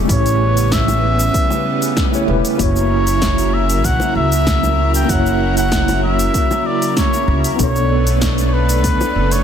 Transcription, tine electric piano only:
0.05 1.91 A3 medium
0.05 1.92 E4 medium
0.10 1.94 G4 medium
0.10 1.95 C#5 medium
2.11 2.23 A3 medium
2.11 2.24 E4 medium
2.11 2.25 G4 medium
2.11 2.25 C#5 medium
2.26 2.55 A3 medium
2.26 2.55 E4 medium
2.26 2.56 G4 medium
2.30 2.57 B4 medium
2.56 4.41 A#3 medium
2.56 4.43 E4 medium
2.61 4.44 F#4 medium
2.61 4.45 C#5 medium
5.05 6.91 A#3 medium
5.05 6.93 E4 medium
5.11 6.94 F#4 medium
5.11 6.95 C#5 medium
7.55 9.41 B3 medium
7.55 9.42 D4 medium
7.61 9.44 A4 medium
7.61 9.44 C#5 medium

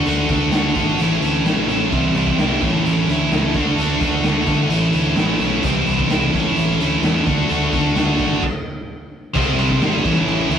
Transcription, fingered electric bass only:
0.06 0.25 D2 medium
0.29 0.48 D2 medium
0.53 0.72 D2 medium
0.76 0.95 G#1 medium
0.98 1.18 A1 medium
1.21 1.41 D2 medium
1.45 1.64 A1 medium
1.68 1.87 A1 medium
1.92 2.11 C2 medium
2.15 2.34 C2 medium
2.37 2.57 C2 medium
2.61 2.81 A1 medium
2.84 3.04 A1 medium
3.08 3.27 D2 medium
3.31 3.50 C#2 medium
3.54 3.73 D2 medium
3.78 3.97 D2 medium
4.01 4.20 D2 medium
4.23 4.43 D2 medium
4.47 4.66 G1 medium
4.69 4.89 A1 medium
4.94 5.13 D2 medium
5.16 5.36 A1 medium
5.40 5.59 B1 medium
5.63 5.83 C2 medium
5.86 6.06 C2 medium
6.10 6.29 C2 medium
6.34 6.53 A1 medium
6.57 6.76 A1 medium
6.80 6.99 D2 medium
7.02 7.22 E2 medium
7.27 7.46 D2 medium
7.49 7.69 D2 medium
7.73 7.92 D2 medium
7.96 8.16 D2 medium
8.19 8.39 G#1 medium
9.35 9.55 C2 medium
9.59 9.78 C2 loud
9.80 10.00 G#1 medium
10.05 10.24 A1 medium
10.27 10.47 A1 medium
10.49 10.59 D2 medium

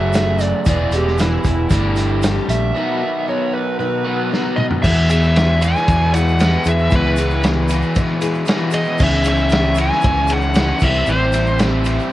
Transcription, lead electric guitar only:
4.56 4.63 D#5 medium
4.82 5.09 E5 medium
5.10 5.64 E5 loud
5.62 6.10 G#5 loud
6.15 6.68 F#5 loud
6.69 6.94 E5 loud
6.96 7.43 B4 medium
8.74 9.01 D#5 loud
9.03 9.27 E5 loud
9.28 9.76 E5 loud
9.81 10.33 G#5 loud
10.33 10.85 F#5 loud
10.85 11.10 E5 loud
11.09 11.57 C5 medium

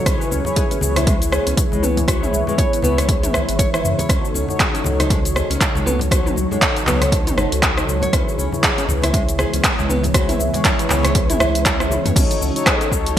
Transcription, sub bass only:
0.06 0.16 C#2 medium
0.31 0.41 C#2 medium
0.82 1.39 C#2 loud
1.47 1.54 C#2 medium
1.72 2.27 C#2 medium
2.33 2.43 C#2 medium
2.83 3.28 C#2 loud
3.33 3.43 C#2 medium
3.48 3.78 G#1 loud
3.84 3.94 F#2 medium
4.09 4.19 C#2 loud
4.34 4.44 C#2 medium
4.85 5.42 C#2 loud
5.50 5.57 C#2 medium
5.75 6.30 C#2 medium
6.36 6.46 C#2 medium
6.87 7.31 C#2 loud
7.37 7.47 G#1 medium
7.52 7.82 C#2 loud
7.88 8.06 C#2 loud
8.13 8.23 C#2 medium
8.38 8.48 C#2 medium
8.88 9.45 C#2 loud
9.53 9.60 C#2 medium
9.78 10.34 C#2 medium
10.39 10.49 C#2 medium
10.90 11.34 C#2 loud
11.40 11.97 C#2 medium
12.05 12.12 F#2 medium
12.16 12.26 C#2 loud
12.41 12.51 C#2 medium
12.91 13.19 C#2 loud

